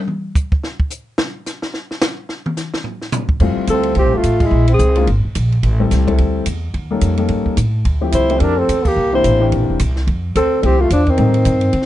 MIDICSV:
0, 0, Header, 1, 7, 480
1, 0, Start_track
1, 0, Tempo, 277649
1, 138, Time_signature, 4, 2, 24, 8
1, 20498, End_track
2, 0, Start_track
2, 0, Title_t, "Alto saxophone"
2, 0, Program_c, 0, 65
2, 6396, Note_on_c, 0, 69, 101
2, 6828, Note_off_c, 0, 69, 0
2, 6896, Note_on_c, 0, 67, 74
2, 7218, Note_on_c, 0, 65, 78
2, 7244, Note_off_c, 0, 67, 0
2, 7708, Note_on_c, 0, 64, 85
2, 7734, Note_off_c, 0, 65, 0
2, 8141, Note_off_c, 0, 64, 0
2, 8187, Note_on_c, 0, 68, 86
2, 8772, Note_off_c, 0, 68, 0
2, 14088, Note_on_c, 0, 72, 84
2, 14512, Note_on_c, 0, 69, 69
2, 14538, Note_off_c, 0, 72, 0
2, 14582, Note_on_c, 0, 70, 82
2, 14608, Note_off_c, 0, 69, 0
2, 14848, Note_on_c, 0, 69, 88
2, 14874, Note_off_c, 0, 70, 0
2, 15346, Note_on_c, 0, 67, 82
2, 15372, Note_off_c, 0, 69, 0
2, 15804, Note_off_c, 0, 67, 0
2, 15820, Note_on_c, 0, 72, 83
2, 16431, Note_off_c, 0, 72, 0
2, 17919, Note_on_c, 0, 69, 100
2, 18426, Note_on_c, 0, 67, 89
2, 18451, Note_off_c, 0, 69, 0
2, 18681, Note_on_c, 0, 65, 83
2, 18707, Note_off_c, 0, 67, 0
2, 18867, Note_off_c, 0, 65, 0
2, 18895, Note_on_c, 0, 62, 94
2, 19188, Note_on_c, 0, 60, 84
2, 19214, Note_off_c, 0, 62, 0
2, 20498, Note_off_c, 0, 60, 0
2, 20498, End_track
3, 0, Start_track
3, 0, Title_t, "Grand piano"
3, 0, Program_c, 1, 0
3, 5889, Note_on_c, 1, 57, 69
3, 5891, Note_on_c, 1, 55, 71
3, 5902, Note_on_c, 1, 60, 68
3, 5911, Note_on_c, 1, 64, 64
3, 5914, Note_on_c, 1, 65, 73
3, 7211, Note_off_c, 1, 57, 0
3, 7212, Note_off_c, 1, 55, 0
3, 7218, Note_off_c, 1, 60, 0
3, 7222, Note_off_c, 1, 64, 0
3, 7224, Note_off_c, 1, 65, 0
3, 8569, Note_on_c, 1, 56, 72
3, 8574, Note_on_c, 1, 58, 63
3, 8582, Note_on_c, 1, 60, 63
3, 8587, Note_on_c, 1, 62, 57
3, 8599, Note_on_c, 1, 65, 80
3, 8747, Note_off_c, 1, 56, 0
3, 8750, Note_off_c, 1, 58, 0
3, 8754, Note_off_c, 1, 60, 0
3, 8757, Note_off_c, 1, 62, 0
3, 8762, Note_off_c, 1, 65, 0
3, 10018, Note_on_c, 1, 55, 71
3, 10021, Note_on_c, 1, 57, 62
3, 10027, Note_on_c, 1, 60, 66
3, 10035, Note_on_c, 1, 64, 64
3, 10043, Note_on_c, 1, 69, 73
3, 10466, Note_off_c, 1, 55, 0
3, 10469, Note_off_c, 1, 57, 0
3, 10474, Note_off_c, 1, 60, 0
3, 10478, Note_off_c, 1, 64, 0
3, 10482, Note_off_c, 1, 69, 0
3, 10492, Note_on_c, 1, 55, 73
3, 10495, Note_on_c, 1, 57, 65
3, 10506, Note_on_c, 1, 60, 73
3, 10507, Note_on_c, 1, 64, 69
3, 10517, Note_on_c, 1, 69, 76
3, 11131, Note_off_c, 1, 55, 0
3, 11133, Note_off_c, 1, 57, 0
3, 11138, Note_off_c, 1, 60, 0
3, 11139, Note_off_c, 1, 64, 0
3, 11144, Note_off_c, 1, 69, 0
3, 11939, Note_on_c, 1, 55, 69
3, 11941, Note_on_c, 1, 58, 66
3, 11949, Note_on_c, 1, 61, 61
3, 11955, Note_on_c, 1, 69, 72
3, 11958, Note_on_c, 1, 63, 60
3, 12388, Note_off_c, 1, 55, 0
3, 12390, Note_off_c, 1, 58, 0
3, 12396, Note_off_c, 1, 61, 0
3, 12399, Note_off_c, 1, 69, 0
3, 12401, Note_off_c, 1, 63, 0
3, 12413, Note_on_c, 1, 55, 64
3, 12416, Note_on_c, 1, 58, 61
3, 12424, Note_on_c, 1, 61, 62
3, 12433, Note_on_c, 1, 63, 55
3, 12433, Note_on_c, 1, 69, 76
3, 13053, Note_off_c, 1, 55, 0
3, 13054, Note_off_c, 1, 58, 0
3, 13058, Note_off_c, 1, 61, 0
3, 13063, Note_off_c, 1, 63, 0
3, 13063, Note_off_c, 1, 69, 0
3, 13846, Note_on_c, 1, 57, 59
3, 13848, Note_on_c, 1, 53, 65
3, 13854, Note_on_c, 1, 60, 63
3, 13862, Note_on_c, 1, 64, 73
3, 13865, Note_on_c, 1, 67, 76
3, 14305, Note_off_c, 1, 57, 0
3, 14306, Note_off_c, 1, 53, 0
3, 14309, Note_off_c, 1, 60, 0
3, 14313, Note_off_c, 1, 64, 0
3, 14315, Note_off_c, 1, 67, 0
3, 14337, Note_on_c, 1, 53, 60
3, 14339, Note_on_c, 1, 57, 57
3, 14350, Note_on_c, 1, 60, 61
3, 14353, Note_on_c, 1, 64, 62
3, 14357, Note_on_c, 1, 67, 75
3, 14976, Note_off_c, 1, 53, 0
3, 14977, Note_off_c, 1, 57, 0
3, 14982, Note_off_c, 1, 60, 0
3, 14983, Note_off_c, 1, 64, 0
3, 14986, Note_off_c, 1, 67, 0
3, 15771, Note_on_c, 1, 52, 66
3, 15776, Note_on_c, 1, 58, 63
3, 15786, Note_on_c, 1, 60, 56
3, 15789, Note_on_c, 1, 62, 61
3, 15795, Note_on_c, 1, 67, 74
3, 16228, Note_off_c, 1, 52, 0
3, 16231, Note_off_c, 1, 58, 0
3, 16236, Note_off_c, 1, 60, 0
3, 16237, Note_off_c, 1, 62, 0
3, 16240, Note_off_c, 1, 67, 0
3, 16254, Note_on_c, 1, 52, 77
3, 16260, Note_on_c, 1, 58, 65
3, 16265, Note_on_c, 1, 60, 68
3, 16271, Note_on_c, 1, 62, 65
3, 16279, Note_on_c, 1, 67, 78
3, 16894, Note_off_c, 1, 52, 0
3, 16897, Note_off_c, 1, 58, 0
3, 16900, Note_off_c, 1, 60, 0
3, 16903, Note_off_c, 1, 62, 0
3, 16907, Note_off_c, 1, 67, 0
3, 18360, Note_on_c, 1, 53, 65
3, 18366, Note_on_c, 1, 57, 55
3, 18366, Note_on_c, 1, 60, 55
3, 18374, Note_on_c, 1, 64, 65
3, 18381, Note_on_c, 1, 67, 69
3, 18625, Note_off_c, 1, 53, 0
3, 18628, Note_off_c, 1, 57, 0
3, 18628, Note_off_c, 1, 60, 0
3, 18632, Note_off_c, 1, 64, 0
3, 18636, Note_off_c, 1, 67, 0
3, 19319, Note_on_c, 1, 55, 63
3, 19323, Note_on_c, 1, 57, 60
3, 19326, Note_on_c, 1, 60, 62
3, 19330, Note_on_c, 1, 63, 63
3, 19342, Note_on_c, 1, 67, 80
3, 19584, Note_off_c, 1, 55, 0
3, 19586, Note_off_c, 1, 57, 0
3, 19588, Note_off_c, 1, 60, 0
3, 19590, Note_off_c, 1, 63, 0
3, 19596, Note_off_c, 1, 67, 0
3, 20498, End_track
4, 0, Start_track
4, 0, Title_t, "Trombone"
4, 0, Program_c, 2, 57
4, 6400, Note_on_c, 2, 60, 75
4, 6831, Note_off_c, 2, 60, 0
4, 6869, Note_on_c, 2, 60, 84
4, 7167, Note_on_c, 2, 57, 76
4, 7193, Note_off_c, 2, 60, 0
4, 7637, Note_on_c, 2, 56, 76
4, 7663, Note_off_c, 2, 57, 0
4, 8099, Note_off_c, 2, 56, 0
4, 8110, Note_on_c, 2, 60, 68
4, 8731, Note_off_c, 2, 60, 0
4, 14038, Note_on_c, 2, 64, 79
4, 14474, Note_on_c, 2, 60, 60
4, 14500, Note_off_c, 2, 64, 0
4, 14534, Note_on_c, 2, 62, 93
4, 14560, Note_off_c, 2, 60, 0
4, 14831, Note_on_c, 2, 60, 76
4, 14857, Note_off_c, 2, 62, 0
4, 15298, Note_on_c, 2, 58, 69
4, 15324, Note_off_c, 2, 60, 0
4, 15780, Note_off_c, 2, 58, 0
4, 15789, Note_on_c, 2, 64, 63
4, 16414, Note_off_c, 2, 64, 0
4, 17915, Note_on_c, 2, 60, 82
4, 18384, Note_off_c, 2, 60, 0
4, 18384, Note_on_c, 2, 60, 90
4, 18697, Note_on_c, 2, 57, 77
4, 18723, Note_off_c, 2, 60, 0
4, 18859, Note_off_c, 2, 57, 0
4, 18870, Note_on_c, 2, 53, 77
4, 19147, Note_on_c, 2, 51, 70
4, 19173, Note_off_c, 2, 53, 0
4, 20299, Note_off_c, 2, 51, 0
4, 20498, End_track
5, 0, Start_track
5, 0, Title_t, "Upright bass"
5, 0, Program_c, 3, 32
5, 5874, Note_on_c, 3, 41, 78
5, 6145, Note_off_c, 3, 41, 0
5, 6355, Note_on_c, 3, 38, 93
5, 6826, Note_off_c, 3, 38, 0
5, 6836, Note_on_c, 3, 36, 76
5, 7002, Note_off_c, 3, 36, 0
5, 7002, Note_on_c, 3, 33, 57
5, 7146, Note_off_c, 3, 33, 0
5, 7156, Note_on_c, 3, 29, 60
5, 7310, Note_off_c, 3, 29, 0
5, 7325, Note_on_c, 3, 33, 83
5, 7785, Note_off_c, 3, 33, 0
5, 7796, Note_on_c, 3, 34, 90
5, 8268, Note_off_c, 3, 34, 0
5, 8284, Note_on_c, 3, 36, 97
5, 8752, Note_off_c, 3, 36, 0
5, 8775, Note_on_c, 3, 32, 84
5, 9038, Note_off_c, 3, 32, 0
5, 9259, Note_on_c, 3, 34, 88
5, 9721, Note_off_c, 3, 34, 0
5, 9733, Note_on_c, 3, 33, 84
5, 10199, Note_off_c, 3, 33, 0
5, 10218, Note_on_c, 3, 36, 86
5, 10682, Note_off_c, 3, 36, 0
5, 10697, Note_on_c, 3, 38, 78
5, 11161, Note_off_c, 3, 38, 0
5, 11173, Note_on_c, 3, 40, 84
5, 11639, Note_off_c, 3, 40, 0
5, 11649, Note_on_c, 3, 39, 79
5, 12118, Note_off_c, 3, 39, 0
5, 12128, Note_on_c, 3, 41, 87
5, 12590, Note_off_c, 3, 41, 0
5, 12600, Note_on_c, 3, 43, 70
5, 12872, Note_off_c, 3, 43, 0
5, 13089, Note_on_c, 3, 45, 86
5, 13558, Note_off_c, 3, 45, 0
5, 13571, Note_on_c, 3, 38, 88
5, 14039, Note_off_c, 3, 38, 0
5, 14049, Note_on_c, 3, 36, 84
5, 14518, Note_off_c, 3, 36, 0
5, 14527, Note_on_c, 3, 41, 77
5, 14998, Note_off_c, 3, 41, 0
5, 15015, Note_on_c, 3, 40, 81
5, 15482, Note_off_c, 3, 40, 0
5, 15492, Note_on_c, 3, 36, 83
5, 15960, Note_off_c, 3, 36, 0
5, 15977, Note_on_c, 3, 33, 87
5, 16443, Note_off_c, 3, 33, 0
5, 16455, Note_on_c, 3, 34, 77
5, 16620, Note_off_c, 3, 34, 0
5, 16620, Note_on_c, 3, 31, 65
5, 16752, Note_off_c, 3, 31, 0
5, 16762, Note_on_c, 3, 28, 64
5, 16918, Note_off_c, 3, 28, 0
5, 16935, Note_on_c, 3, 36, 98
5, 17402, Note_off_c, 3, 36, 0
5, 17413, Note_on_c, 3, 41, 84
5, 17881, Note_off_c, 3, 41, 0
5, 17902, Note_on_c, 3, 38, 90
5, 18365, Note_off_c, 3, 38, 0
5, 18380, Note_on_c, 3, 36, 85
5, 18844, Note_off_c, 3, 36, 0
5, 18853, Note_on_c, 3, 40, 92
5, 19313, Note_off_c, 3, 40, 0
5, 19323, Note_on_c, 3, 45, 84
5, 19796, Note_off_c, 3, 45, 0
5, 19805, Note_on_c, 3, 43, 90
5, 20267, Note_off_c, 3, 43, 0
5, 20278, Note_on_c, 3, 50, 81
5, 20498, Note_off_c, 3, 50, 0
5, 20498, End_track
6, 0, Start_track
6, 0, Title_t, "Muted upright bass strokes"
6, 6165, Note_on_c, 9, 29, 38
6, 6338, Note_off_c, 9, 29, 0
6, 9076, Note_on_c, 9, 29, 43
6, 9249, Note_off_c, 9, 29, 0
6, 12894, Note_on_c, 9, 29, 39
6, 13067, Note_off_c, 9, 29, 0
6, 20498, End_track
7, 0, Start_track
7, 0, Title_t, "Drums"
7, 132, Note_on_c, 9, 47, 40
7, 305, Note_off_c, 9, 47, 0
7, 610, Note_on_c, 9, 44, 66
7, 613, Note_on_c, 9, 36, 88
7, 783, Note_off_c, 9, 44, 0
7, 786, Note_off_c, 9, 36, 0
7, 898, Note_on_c, 9, 36, 88
7, 1071, Note_off_c, 9, 36, 0
7, 1098, Note_on_c, 9, 38, 46
7, 1271, Note_off_c, 9, 38, 0
7, 1376, Note_on_c, 9, 36, 72
7, 1549, Note_off_c, 9, 36, 0
7, 1559, Note_on_c, 9, 44, 72
7, 1731, Note_off_c, 9, 44, 0
7, 2040, Note_on_c, 9, 38, 107
7, 2213, Note_off_c, 9, 38, 0
7, 2526, Note_on_c, 9, 44, 62
7, 2531, Note_on_c, 9, 38, 39
7, 2699, Note_off_c, 9, 44, 0
7, 2704, Note_off_c, 9, 38, 0
7, 2806, Note_on_c, 9, 38, 54
7, 2979, Note_off_c, 9, 38, 0
7, 3005, Note_on_c, 9, 38, 43
7, 3178, Note_off_c, 9, 38, 0
7, 3299, Note_on_c, 9, 38, 39
7, 3472, Note_off_c, 9, 38, 0
7, 3480, Note_on_c, 9, 44, 71
7, 3485, Note_on_c, 9, 38, 123
7, 3653, Note_off_c, 9, 44, 0
7, 3658, Note_off_c, 9, 38, 0
7, 3959, Note_on_c, 9, 38, 45
7, 4131, Note_off_c, 9, 38, 0
7, 4251, Note_on_c, 9, 47, 66
7, 4424, Note_off_c, 9, 47, 0
7, 4440, Note_on_c, 9, 44, 69
7, 4445, Note_on_c, 9, 38, 44
7, 4612, Note_off_c, 9, 44, 0
7, 4618, Note_off_c, 9, 38, 0
7, 4730, Note_on_c, 9, 38, 64
7, 4903, Note_off_c, 9, 38, 0
7, 4910, Note_on_c, 9, 43, 53
7, 5083, Note_off_c, 9, 43, 0
7, 5213, Note_on_c, 9, 38, 35
7, 5385, Note_off_c, 9, 38, 0
7, 5395, Note_on_c, 9, 44, 74
7, 5400, Note_on_c, 9, 43, 123
7, 5568, Note_off_c, 9, 44, 0
7, 5573, Note_off_c, 9, 43, 0
7, 5683, Note_on_c, 9, 36, 75
7, 5856, Note_off_c, 9, 36, 0
7, 5875, Note_on_c, 9, 49, 61
7, 5879, Note_on_c, 9, 36, 62
7, 6048, Note_off_c, 9, 49, 0
7, 6051, Note_off_c, 9, 36, 0
7, 6349, Note_on_c, 9, 44, 53
7, 6349, Note_on_c, 9, 51, 70
7, 6358, Note_on_c, 9, 36, 26
7, 6522, Note_off_c, 9, 44, 0
7, 6522, Note_off_c, 9, 51, 0
7, 6531, Note_off_c, 9, 36, 0
7, 6626, Note_on_c, 9, 51, 45
7, 6799, Note_off_c, 9, 51, 0
7, 6826, Note_on_c, 9, 51, 51
7, 6840, Note_on_c, 9, 36, 19
7, 6999, Note_off_c, 9, 51, 0
7, 7013, Note_off_c, 9, 36, 0
7, 7320, Note_on_c, 9, 44, 52
7, 7320, Note_on_c, 9, 51, 78
7, 7326, Note_on_c, 9, 36, 21
7, 7493, Note_off_c, 9, 44, 0
7, 7493, Note_off_c, 9, 51, 0
7, 7499, Note_off_c, 9, 36, 0
7, 7609, Note_on_c, 9, 49, 54
7, 7611, Note_on_c, 9, 36, 72
7, 7782, Note_off_c, 9, 49, 0
7, 7784, Note_off_c, 9, 36, 0
7, 8083, Note_on_c, 9, 51, 61
7, 8256, Note_off_c, 9, 51, 0
7, 8277, Note_on_c, 9, 44, 63
7, 8292, Note_on_c, 9, 36, 20
7, 8450, Note_off_c, 9, 44, 0
7, 8465, Note_off_c, 9, 36, 0
7, 8565, Note_on_c, 9, 51, 49
7, 8738, Note_off_c, 9, 51, 0
7, 8769, Note_on_c, 9, 51, 58
7, 8777, Note_on_c, 9, 36, 18
7, 8942, Note_off_c, 9, 51, 0
7, 8949, Note_off_c, 9, 36, 0
7, 9249, Note_on_c, 9, 44, 61
7, 9249, Note_on_c, 9, 51, 81
7, 9259, Note_on_c, 9, 36, 25
7, 9422, Note_off_c, 9, 44, 0
7, 9422, Note_off_c, 9, 51, 0
7, 9432, Note_off_c, 9, 36, 0
7, 9548, Note_on_c, 9, 51, 30
7, 9721, Note_off_c, 9, 51, 0
7, 9735, Note_on_c, 9, 51, 57
7, 9742, Note_on_c, 9, 36, 19
7, 9908, Note_off_c, 9, 51, 0
7, 9915, Note_off_c, 9, 36, 0
7, 10216, Note_on_c, 9, 44, 55
7, 10216, Note_on_c, 9, 51, 62
7, 10220, Note_on_c, 9, 36, 18
7, 10221, Note_on_c, 9, 38, 41
7, 10389, Note_off_c, 9, 44, 0
7, 10389, Note_off_c, 9, 51, 0
7, 10393, Note_off_c, 9, 36, 0
7, 10394, Note_off_c, 9, 38, 0
7, 10505, Note_on_c, 9, 36, 56
7, 10508, Note_on_c, 9, 51, 45
7, 10678, Note_off_c, 9, 36, 0
7, 10681, Note_off_c, 9, 51, 0
7, 10689, Note_on_c, 9, 51, 56
7, 10699, Note_on_c, 9, 36, 23
7, 10862, Note_off_c, 9, 51, 0
7, 10872, Note_off_c, 9, 36, 0
7, 11163, Note_on_c, 9, 44, 72
7, 11163, Note_on_c, 9, 51, 81
7, 11173, Note_on_c, 9, 36, 24
7, 11335, Note_off_c, 9, 44, 0
7, 11335, Note_off_c, 9, 51, 0
7, 11346, Note_off_c, 9, 36, 0
7, 11651, Note_on_c, 9, 51, 49
7, 11652, Note_on_c, 9, 36, 17
7, 11824, Note_off_c, 9, 51, 0
7, 11825, Note_off_c, 9, 36, 0
7, 12122, Note_on_c, 9, 44, 52
7, 12122, Note_on_c, 9, 51, 71
7, 12130, Note_on_c, 9, 36, 23
7, 12295, Note_off_c, 9, 44, 0
7, 12295, Note_off_c, 9, 51, 0
7, 12302, Note_off_c, 9, 36, 0
7, 12403, Note_on_c, 9, 51, 41
7, 12576, Note_off_c, 9, 51, 0
7, 12593, Note_on_c, 9, 51, 54
7, 12608, Note_on_c, 9, 36, 20
7, 12766, Note_off_c, 9, 51, 0
7, 12781, Note_off_c, 9, 36, 0
7, 12894, Note_on_c, 9, 36, 39
7, 13066, Note_off_c, 9, 36, 0
7, 13085, Note_on_c, 9, 44, 73
7, 13085, Note_on_c, 9, 51, 65
7, 13090, Note_on_c, 9, 36, 26
7, 13258, Note_off_c, 9, 44, 0
7, 13258, Note_off_c, 9, 51, 0
7, 13263, Note_off_c, 9, 36, 0
7, 13571, Note_on_c, 9, 51, 54
7, 13574, Note_on_c, 9, 36, 18
7, 13744, Note_off_c, 9, 51, 0
7, 13747, Note_off_c, 9, 36, 0
7, 14043, Note_on_c, 9, 44, 67
7, 14043, Note_on_c, 9, 51, 74
7, 14053, Note_on_c, 9, 36, 22
7, 14216, Note_off_c, 9, 44, 0
7, 14216, Note_off_c, 9, 51, 0
7, 14226, Note_off_c, 9, 36, 0
7, 14341, Note_on_c, 9, 51, 45
7, 14514, Note_off_c, 9, 51, 0
7, 14522, Note_on_c, 9, 51, 57
7, 14533, Note_on_c, 9, 36, 18
7, 14695, Note_off_c, 9, 51, 0
7, 14706, Note_off_c, 9, 36, 0
7, 15018, Note_on_c, 9, 36, 25
7, 15020, Note_on_c, 9, 44, 69
7, 15020, Note_on_c, 9, 51, 72
7, 15191, Note_off_c, 9, 36, 0
7, 15193, Note_off_c, 9, 44, 0
7, 15193, Note_off_c, 9, 51, 0
7, 15301, Note_on_c, 9, 36, 60
7, 15302, Note_on_c, 9, 49, 52
7, 15474, Note_off_c, 9, 36, 0
7, 15475, Note_off_c, 9, 49, 0
7, 15975, Note_on_c, 9, 44, 58
7, 15975, Note_on_c, 9, 51, 72
7, 15979, Note_on_c, 9, 36, 23
7, 16148, Note_off_c, 9, 44, 0
7, 16148, Note_off_c, 9, 51, 0
7, 16152, Note_off_c, 9, 36, 0
7, 16457, Note_on_c, 9, 51, 54
7, 16461, Note_on_c, 9, 36, 17
7, 16630, Note_off_c, 9, 51, 0
7, 16633, Note_off_c, 9, 36, 0
7, 16932, Note_on_c, 9, 44, 57
7, 16932, Note_on_c, 9, 51, 81
7, 16940, Note_on_c, 9, 36, 23
7, 17105, Note_off_c, 9, 44, 0
7, 17105, Note_off_c, 9, 51, 0
7, 17113, Note_off_c, 9, 36, 0
7, 17220, Note_on_c, 9, 38, 29
7, 17393, Note_off_c, 9, 38, 0
7, 17415, Note_on_c, 9, 51, 49
7, 17421, Note_on_c, 9, 36, 21
7, 17588, Note_off_c, 9, 51, 0
7, 17594, Note_off_c, 9, 36, 0
7, 17900, Note_on_c, 9, 44, 61
7, 17900, Note_on_c, 9, 51, 72
7, 17902, Note_on_c, 9, 36, 26
7, 18073, Note_off_c, 9, 44, 0
7, 18073, Note_off_c, 9, 51, 0
7, 18075, Note_off_c, 9, 36, 0
7, 18378, Note_on_c, 9, 51, 58
7, 18380, Note_on_c, 9, 36, 15
7, 18551, Note_off_c, 9, 51, 0
7, 18553, Note_off_c, 9, 36, 0
7, 18850, Note_on_c, 9, 44, 59
7, 18850, Note_on_c, 9, 51, 79
7, 18855, Note_on_c, 9, 36, 24
7, 19023, Note_off_c, 9, 44, 0
7, 19023, Note_off_c, 9, 51, 0
7, 19028, Note_off_c, 9, 36, 0
7, 19128, Note_on_c, 9, 51, 31
7, 19136, Note_on_c, 9, 36, 45
7, 19301, Note_off_c, 9, 51, 0
7, 19309, Note_off_c, 9, 36, 0
7, 19320, Note_on_c, 9, 51, 54
7, 19329, Note_on_c, 9, 36, 21
7, 19493, Note_off_c, 9, 51, 0
7, 19502, Note_off_c, 9, 36, 0
7, 19603, Note_on_c, 9, 51, 47
7, 19776, Note_off_c, 9, 51, 0
7, 19795, Note_on_c, 9, 44, 64
7, 19795, Note_on_c, 9, 51, 71
7, 19805, Note_on_c, 9, 36, 30
7, 19968, Note_off_c, 9, 44, 0
7, 19968, Note_off_c, 9, 51, 0
7, 19978, Note_off_c, 9, 36, 0
7, 20070, Note_on_c, 9, 51, 47
7, 20243, Note_off_c, 9, 51, 0
7, 20274, Note_on_c, 9, 51, 57
7, 20281, Note_on_c, 9, 36, 23
7, 20434, Note_on_c, 9, 38, 29
7, 20447, Note_off_c, 9, 51, 0
7, 20454, Note_off_c, 9, 36, 0
7, 20498, Note_off_c, 9, 38, 0
7, 20498, End_track
0, 0, End_of_file